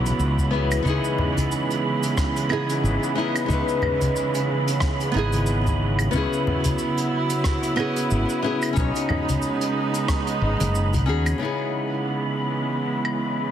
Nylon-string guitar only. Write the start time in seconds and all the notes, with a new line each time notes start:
0.51 B3 C#4 E4 G#4
0.82 B3 D#4
0.87 E4 G#4
2.49 B3 D#4 E4 G#4
3.15 B3 D#4 E4 G#4
3.46 B3 D#4
3.51 E4 B4
5.12 B3 D#4
5.16 E4 G#4
6.11 B3 C#4
6.15 E4 G#4
7.76 B3 C#4 E4 G#4
8.42 B3 C#4 E4 G#4
8.73 C#4 D#4
8.77 F#4 C#5
11.06 C#4 D#4 F#4 G#4
11.38 C#3 B3 D#4
11.43 E4 G#4